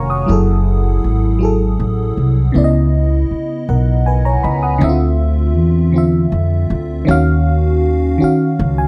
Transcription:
Already playing: upright bass F1, fm electric piano D#3 C#4 F#4 A#4 C#5 F5 F#5 G#5 A#5 C#6
0.10 fm electric piano F#5 D#6
0.26 upright bass F#1, fm electric piano F#3 E4 G#4
0.32 fm electric piano A4
1.04 upright bass G#1
1.39 fm electric piano F#3 E4 G#4
1.45 fm electric piano A4
1.80 upright bass A1
2.17 upright bass C2
2.52 upright bass C#2, fm electric piano C#3 B3 E4
2.58 fm electric piano D5
2.64 fm electric piano D#5
3.31 muted upright bass stroke
3.69 upright bass B1, fm electric piano A#4 F#5
4.06 fm electric piano B4 G#5
4.25 fm electric piano C#5 A#5
4.43 upright bass C#2, fm electric piano D#5 B5
4.63 fm electric piano F#5 D#6
4.78 upright bass D2, fm electric piano D3 C4
4.83 fm electric piano E4 E5
4.89 fm electric piano F4
5.57 upright bass E2
5.92 fm electric piano D3 C4 F4
5.98 fm electric piano E5
6.32 upright bass F2
6.70 upright bass D2
7.05 upright bass D#2, fm electric piano D#3 C#4 F#4
7.11 fm electric piano F5
8.18 fm electric piano D#3 C#4 F#4, muted upright bass stroke
8.24 fm electric piano F5
8.59 upright bass C#2
8.78 fm electric piano G#5

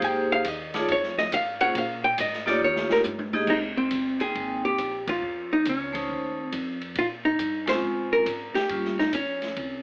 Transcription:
Already playing: vibraphone A#3 D#4 G4 G#4 C5
0.02 upright bass G#2, hollow-body jazz guitar G5, kick, ride
0.32 hollow-body jazz guitar F5
0.45 upright bass D#2, hollow-body jazz guitar D#5, kick, hi-hat pedal, ride
0.74 vibraphone A3 D#4 F4 G#4 C#5, hollow-body jazz guitar D5, snare, ride
0.88 upright bass F2, hollow-body jazz guitar C#5, kick, ride
1.03 snare
1.18 hollow-body jazz guitar D#5, snare
1.32 upright bass G#2, hollow-body jazz guitar F5, kick, hi-hat pedal, ride
1.61 vibraphone A#3 C#4 F4 G#4 C5, hollow-body jazz guitar F#5, ride
1.75 upright bass A#2, hollow-body jazz guitar F5, kick, ride
2.04 hollow-body jazz guitar G5
2.18 upright bass G#2, hollow-body jazz guitar D#5, kick, hi-hat pedal, ride
2.33 snare
2.46 vibraphone A#3 D#4 F4 G4 C#5, hollow-body jazz guitar D5, snare
2.61 upright bass D#2, hollow-body jazz guitar C#5
2.76 snare
2.90 hollow-body jazz guitar A#4, muted upright bass stroke, snare
3.04 upright bass G2, hi-hat pedal, high tom
3.19 high tom
3.33 vibraphone A#3 D#4 G4 G#4 D#5, high tom
3.47 upright bass C2, hollow-body jazz guitar D#4, kick, crash
3.77 hollow-body jazz guitar C4
3.91 upright bass G1, kick, hi-hat pedal, ride
4.20 vibraphone A#3 C4 D#4 G5, hollow-body jazz guitar G#4, ride
4.35 upright bass G#1, kick, ride
4.65 hollow-body jazz guitar G4
4.78 upright bass A#1, kick, hi-hat pedal, ride
5.07 hollow-body jazz guitar F4, kick, ride
5.22 upright bass F2
5.53 hollow-body jazz guitar D#4
5.65 upright bass C#2, hollow-body jazz guitar C#4, kick, hi-hat pedal, ride
5.93 vibraphone A3 C#4 D#4 C5, kick, ride
6.09 upright bass D#2, kick
6.42 hollow-body jazz guitar C4
6.52 upright bass F2, kick, hi-hat pedal, ride
6.81 ride
6.95 upright bass A#2, hollow-body jazz guitar F4, kick, ride
7.25 hollow-body jazz guitar D#4
7.39 upright bass G2, kick, hi-hat pedal, ride
7.66 vibraphone G#3 C4 C#4 F4, hollow-body jazz guitar C5, snare, ride
7.82 upright bass G#2
8.13 hollow-body jazz guitar A#4
8.26 upright bass G#2, kick, hi-hat pedal, ride
8.55 hollow-body jazz guitar G4, muted upright bass stroke, snare, ride
8.69 upright bass G2, vibraphone G3 A#3 C#4 F4, kick, ride
8.85 snare
8.99 hollow-body jazz guitar D#4, snare
9.13 upright bass F2, hollow-body jazz guitar C#4, kick, hi-hat pedal, ride
9.42 snare, ride
9.56 upright bass C2, kick, ride

